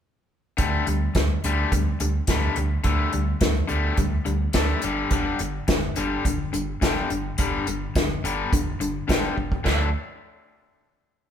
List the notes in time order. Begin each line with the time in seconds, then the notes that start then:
0.57 D2 D3 G3 A3, kick, closed hi-hat
0.86 D2 D3 G3, closed hi-hat
1.15 D2 D3 G3, kick, snare, closed hi-hat
1.44 D2 D3 G3 A3, closed hi-hat
1.72 D2 D3 G3, kick, closed hi-hat
2.00 D2 D3 G3, closed hi-hat
2.27 D2 D3 G3 A3, kick, snare, closed hi-hat
2.56 D2 D3 G3, closed hi-hat
2.84 D2 D3 G3 A3, kick, closed hi-hat
3.13 D2 D3 G3, closed hi-hat
3.41 D2 D3 G3, kick, snare, closed hi-hat
3.68 D2 D3 G3 A3, closed hi-hat
3.97 D2 D3 G3, kick, closed hi-hat
4.25 D2 D3 G3, closed hi-hat
4.53 D2 D3 G3 A3, kick, snare, closed hi-hat
4.82 G1 G2 D3 G3, closed hi-hat
5.11 G1 G2 D3 G3, kick, closed hi-hat
5.39 G1 G2 D3, closed hi-hat
5.68 G1 G2 D3, kick, snare, closed hi-hat
5.96 G1 G2 D3 G3, closed hi-hat
6.25 G1 G2 D3, kick, closed hi-hat
6.53 G1 G2 D3, closed hi-hat
6.81 G1 G2 D3 G3, kick, snare, closed hi-hat
7.10 G1 G2 D3, closed hi-hat
7.38 G1 G2 D3 G3, kick, closed hi-hat
7.67 G1 G2 D3, closed hi-hat
7.95 G1 G2 D3, kick, snare, closed hi-hat
8.24 G1 G2 D3 G3, closed hi-hat
8.53 G1 G2 D3, kick, closed hi-hat
8.80 G1 G2 D3, closed hi-hat
9.08 G1 G2 D3 G3, kick, snare, closed hi-hat
9.36 G1 G2 D3, kick
9.52 kick
9.64 D2 D3 F#3 A3 D4, kick, snare, china